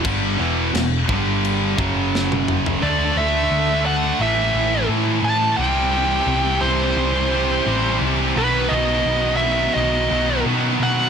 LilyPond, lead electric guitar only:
\new Staff \with { instrumentName = "Lead electric guitar" } { \time 4/4 \key c \lydian \tempo 4 = 86 r1 | d''8 e''4 fis''8 e''4 r8 a''8 | g''4. c''2 r8 | b'8 dis''4 e''8 dis''4 r8 fis''8 | }